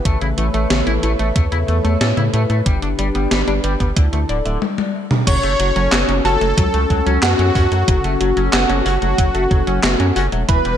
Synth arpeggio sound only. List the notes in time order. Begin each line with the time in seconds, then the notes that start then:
0.05 C#3
0.21 C#3
0.38 E3
0.54 A3
0.70 C#3
0.87 E3
1.03 E4
1.19 A3
1.36 C#3
1.52 C#3
1.68 E3
1.85 A3
2.01 C#4
2.17 C#3
2.33 E4
2.50 A3
2.66 D3
2.82 D3
2.99 G3
3.15 B3
3.31 D3
3.48 G3
3.64 B4
3.80 B3
3.97 D3
4.13 D3
4.29 D5
4.46 A3
5.27 C#3
5.43 C#3
5.60 F#4
5.76 F#3
5.92 A3
6.09 C#4
6.25 F#4
6.41 A3
6.58 F#3
6.74 A4
6.90 A4
7.06 F#3
7.23 A3
7.39 C#4
7.55 F#4
7.72 A3
7.88 C#3
8.04 C#3
8.21 F#4
8.37 F#3
8.53 A3
8.70 C#4
8.86 F#4
9.02 A3
9.18 F#3
9.35 A4
9.51 A4
9.67 F#3
9.84 A3
10.00 C#4
10.16 F#4
10.32 A3
10.49 E3
10.65 E3